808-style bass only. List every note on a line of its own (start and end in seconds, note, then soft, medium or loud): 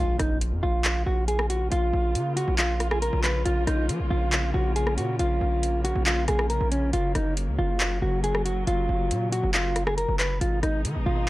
0.00 0.19 A#1 loud
0.19 0.54 A#1 loud
0.52 0.62 F2 loud
0.63 1.05 A#1 loud
1.06 1.69 A#1 loud
1.72 1.92 A#1 loud
1.93 2.17 A#1 loud
2.15 2.46 C#3 loud
2.48 3.10 A#1 loud
3.13 3.44 A#1 loud
3.46 3.66 A#1 loud
3.67 3.90 A#1 loud
3.89 4.01 F3 loud
4.00 4.10 A#1 loud
4.11 4.52 A#1 loud
4.54 4.99 A#1 loud
4.98 5.18 A#2 loud
5.19 5.40 A#1 loud
5.41 5.93 A#1 loud
5.95 6.27 A#1 loud
6.28 6.59 A#1 loud
6.61 6.92 A#1 loud
6.93 7.14 F#1 loud
7.15 7.49 F#1 loud
7.48 7.58 C#2 loud
7.59 8.00 F#1 loud
8.02 8.65 F#1 loud
8.67 8.88 F#1 loud
8.89 9.12 F#1 loud
9.11 9.42 A#2 loud
9.43 10.06 F#1 loud
10.09 10.40 F#1 loud
10.41 10.62 G#1 loud
10.63 10.86 G#1 loud
10.85 10.97 D#3 loud
10.95 11.06 G#1 loud
11.06 11.29 G#1 loud